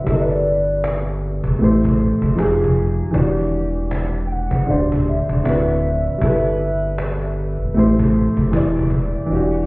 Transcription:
0.04 G1 G3 E4, cajon bass
0.08 A4 D5
0.13 A#4
0.19 B4
0.45 cajon slap
0.84 cajon slap
1.24 cajon slap
1.44 E1, cajon bass
1.59 A1 A3 E4 G4, cajon slap
1.64 C5
1.85 cajon bass, cajon slap
2.00 cajon slap
2.22 F#1, cajon bass
2.36 F1 F3 D#4 G4, cajon slap
2.40 G#4
2.64 cajon bass
2.74 cajon slap
3.00 cajon slap
3.11 E1 E3 D4, cajon bass
3.17 F#4 G4
3.52 cajon slap
3.91 cajon slap
4.27 G5
4.31 F#5, cajon slap
4.51 G1, cajon bass
4.66 D1 D3 D4 F#4 D5, cajon slap
4.71 C5
4.76 G4
4.92 cajon bass, cajon slap
5.06 E5, cajon slap
5.29 E1, cajon bass
5.44 D1 D3 C4 E4 F#4, cajon slap
5.48 B4
5.82 cajon slap
6.08 cajon slap
6.18 G1 G3 E4, cajon bass
6.24 A4 B4
6.59 cajon slap
6.83 cajon slap
6.98 cajon slap
7.39 cajon slap
7.62 E1
7.74 A1 A3 E4 G4, cajon slap
7.79 C5
7.99 cajon bass, cajon slap
8.14 cajon slap
8.37 F#1, cajon bass
8.51 E1 E3 E4 G4, cajon slap
8.56 D5
8.79 cajon bass
8.90 cajon bass
9.15 cajon slap
9.26 E1 E3 D4
9.32 F#4 G4

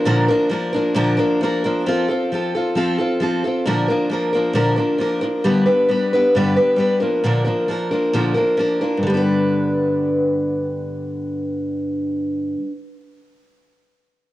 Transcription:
0.05 A#2 D3 F3 A#3 D4 A#4
0.28 F3 A#3 D4 A#4
0.49 F3 A#3 D4 A#4
0.73 F3 A#3 D4 A#4
0.94 A#2 D3 F3 A#3 D4 A#4
1.17 F3 A#3 D4 A#4
1.41 F3 A#3 D4 A#4
1.64 F3 A#3 D4 A#4
1.86 F3 C4 F4 A4
2.08 C4 F4 A4
2.32 F3 C4 F4 A4
2.55 C4 F4 A4
2.75 F3 C4 F4 A4
2.98 C4 F4 A4
3.20 F3 C4 F4 A4
3.44 C4 F4 A4
3.65 A#2 D3 F3 A#3 D4 A#4
3.88 F3 A#3 D4 A#4
4.09 F3 A#3 D4 A#4
4.33 F3 A#3 D4 A#4
4.53 A#2 D3 F3 A#3 D4 A#4
4.76 F3 A#3 D4 A#4
4.98 F3 A#3 D4 A#4
5.21 F3 A#3 D4 A#4
5.44 G2 D3 G3 B3 D4 B4
5.66 G3 B3 D4 B4
5.89 G3 B3 D4 B4
6.13 G3 B3 D4 B4
6.35 G2 D3 G3 B3 D4 B4
6.56 G3 B3 D4 B4
6.76 G3 B3 D4 B4
7.00 F3 A#3 D4 A#4
7.24 A#2 D3 F3 A#3 D4 A#4
7.45 F3 A#3 D4 A#4
7.68 F3 A#3 D4 A#4
7.91 F3 A#3 D4 A#4
8.14 A#2 D3 F3 A#3 D4 A#4
8.34 F3 A#3 D4 A#4
8.57 F3 A#3 D4 A#4
8.81 F3 A#3 D4 A#4
8.97 G2
9.03 D3 G3
9.10 B3
9.14 D4 B4

